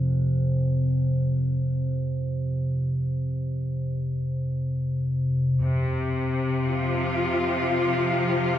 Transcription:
0.00 5.63 F2 medium
0.00 5.63 C3 medium
0.00 5.63 C5 medium
5.61 8.59 F2 medium
5.61 8.59 C3 medium
6.64 8.59 F4 medium
6.72 8.59 F3 medium

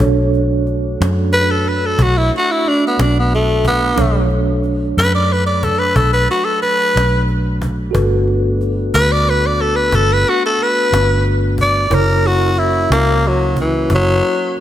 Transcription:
0.00 0.96 B1 loud
0.00 3.94 A3 medium
0.00 3.93 D4 medium
0.00 3.94 D4 medium
0.00 3.94 F#4 medium
0.00 3.93 A4 medium
0.00 3.94 C#5 medium
0.00 cajon bass loud
0.34 cajon slap soft
0.67 cajon slap soft
1.01 1.95 F#2 medium
1.01 cajon slap loud
1.32 1.52 B4 loud
1.32 cajon slap soft
1.51 1.69 A4 medium
1.66 1.87 B4 medium
1.66 cajon slap soft
1.86 2.04 A4 medium
1.99 2.29 B1 medium
1.99 cajon bass loud
2.03 2.19 F#4 medium
2.17 2.32 E4 medium
2.32 cajon slap soft
2.37 2.53 F#4 medium
2.51 2.70 E4 medium
2.65 2.82 D4 loud
2.65 cajon slap soft
2.87 3.03 B3 medium
2.99 3.94 B1 medium
2.99 3.16 D4 medium
2.99 cajon slap loud
3.19 3.33 B3 medium
3.32 3.65 A3 medium
3.32 cajon slap soft
3.65 4.30 B3 loud
3.65 cajon bass medium
3.65 cajon slap soft
3.96 4.93 B1 medium
3.96 7.91 F#3 medium
3.96 7.91 A3 medium
3.96 7.90 D4 soft
3.96 7.91 D4 medium
3.96 7.90 A4 soft
3.96 7.91 C#5 medium
3.96 cajon bass loud
4.31 cajon slap soft
4.63 cajon slap soft
4.66 cajon slap soft
4.97 5.92 F#2 medium
4.97 5.13 B4 loud
4.97 cajon slap loud
5.15 5.34 D5 medium
5.31 5.46 B4 medium
5.31 cajon slap soft
5.46 5.65 D5 medium
5.63 5.80 A4 medium
5.63 cajon bass medium
5.79 5.97 B4 medium
5.96 6.26 B1 medium
5.96 6.11 A4 medium
5.96 cajon bass loud
6.13 6.28 B4 medium
6.29 6.46 F#4 medium
6.29 cajon slap soft
6.45 6.61 A4 medium
6.62 7.26 B4 medium
6.62 cajon slap soft
6.96 7.91 B1 medium
6.96 cajon slap loud
7.28 cajon slap soft
7.62 cajon bass medium
7.91 8.90 G1 medium
7.91 11.88 A3 medium
7.91 11.87 B3 medium
7.91 11.87 D4 medium
7.91 11.86 F#4 medium
7.91 11.87 F#4 medium
7.91 11.87 A4 medium
7.91 11.87 B4 medium
7.91 cajon bass loud
8.28 cajon slap soft
8.61 cajon slap soft
8.63 cajon slap soft
8.94 9.89 D2 medium
8.94 9.13 B4 loud
8.94 cajon slap loud
9.12 9.31 D5 medium
9.26 9.48 B4 medium
9.26 cajon slap soft
9.46 9.63 D5 medium
9.59 9.77 A4 medium
9.59 cajon slap soft
9.76 9.96 B4 medium
9.92 10.23 G1 medium
9.92 10.14 A4 medium
9.92 cajon bass loud
10.13 10.31 B4 medium
10.25 10.43 F#4 medium
10.25 cajon slap soft
10.46 10.64 A4 medium
10.58 cajon slap soft
10.63 11.25 B4 loud
10.92 11.88 G1 medium
10.92 cajon slap loud
11.25 cajon slap soft
11.58 11.96 D5 medium
11.58 cajon bass medium
11.58 cajon slap soft
11.90 12.86 F#1 medium
11.90 14.60 A#3 medium
11.90 14.60 C#4 medium
11.90 14.60 E4 soft
11.90 14.60 E4 medium
11.90 14.60 F#4 medium
11.90 14.60 A#4 soft
11.90 12.28 A#4 medium
11.90 14.60 C#5 medium
11.90 cajon bass loud
12.23 12.60 F#4 medium
12.23 cajon slap soft
12.57 12.90 E4 loud
12.57 cajon slap soft
12.90 13.86 C#2 medium
12.90 13.29 A#3 medium
12.90 cajon slap loud
13.23 13.58 F#3 medium
13.23 cajon slap soft
13.57 13.91 E3 medium
13.57 cajon bass medium
13.90 14.20 F#1 medium
13.90 cajon bass loud
13.95 14.57 F#3 loud
14.57 cajon slap soft

